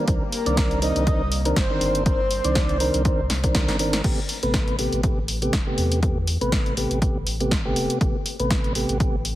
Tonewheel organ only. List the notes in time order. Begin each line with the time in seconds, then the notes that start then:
0.08 D#3 C4 D4 A#4
0.46 D#3 C4 D4 D5
0.82 D#3 C4 D4 A#4
1.07 D#3 C4 D4 A#4
1.45 D#3 C4 D4 A#4
1.70 D#3 C4 D4 A#4
2.06 D#3 C4 D4 A#4
2.44 D#3 C4 D4 D5
2.80 D#3 C4 D4 A#4
3.05 D#3 C4 D4 A#4
3.44 D#3 C4 D4 A#4
3.79 D#3 C4 D4 A#4
4.04 C3 A3 B3 G4
4.43 C3 A3 B3 B4
4.79 C3 A3 B3 G4
5.03 C3 A3 B3 G4
5.42 C3 A3 B3 G4
5.67 C3 A3 B3 G4
6.02 C3 A3 B3 G4
6.41 C3 A3 B3 B4
6.77 C3 A3 B3 G4
7.02 C3 A3 B3 G4
7.40 C3 A3 B3 G4
7.65 C3 A3 B3 G4
8.01 C3 A3 B3 G4
8.39 C3 A3 B3 B4
8.75 C3 A3 B3 G4
9.00 C3 A3 B3 G4